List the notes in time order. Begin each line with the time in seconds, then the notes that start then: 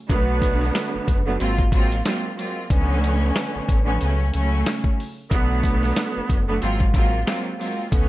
0.08 B1 D3 F#3 A3 B3, kick, closed hi-hat
0.42 kick, closed hi-hat
0.61 snare
0.75 snare, clap, closed hi-hat
0.94 F#1
1.08 F#1, kick, closed hi-hat
1.26 D3 F#3 A3 B3
1.39 G#1 F#3 G#3 A#3 C4 F4, closed hi-hat
1.58 kick
1.72 A1 F#3 G#3 A#3 C4 F4, kick, closed hi-hat
1.92 closed hi-hat
2.04 F#3 G#3 A#3 C4 F4, snare, clap, closed hi-hat
2.37 F#3 G#3 A#3 C4 F4, closed hi-hat
2.70 C#2 D3 F3 A3 B3 C#4, kick, closed hi-hat
3.04 closed hi-hat
3.36 snare, clap, closed hi-hat
3.55 A1
3.69 A1, kick, closed hi-hat
3.85 D3 F3 A3 B3 C#4
4.00 C#2 C#3 F#3 A3 C#4, closed hi-hat
4.33 C#2 C#3 F#3 A3 C#4, closed hi-hat
4.66 snare, clap, closed hi-hat
4.84 kick
5.00 open hi-hat
5.30 B1 D3 F#3 A3 B3, kick, closed hi-hat
5.63 kick, closed hi-hat
5.83 snare
5.97 snare, clap, closed hi-hat
6.16 F#1
6.30 F#1, kick, closed hi-hat
6.47 D3 F#3 A3 B3
6.61 G#1 F#3 G#3 A#3 C4 F4, closed hi-hat
6.80 kick
6.94 A1 F#3 G#3 A#3 C4 F4, kick, closed hi-hat
7.26 F#3 G#3 A#3 C4 F4, snare, clap, closed hi-hat
7.58 F#3 G#3 A#3 C4 F4, open hi-hat
7.91 C#2 D3 F3 A3 B3 C#4, kick, closed hi-hat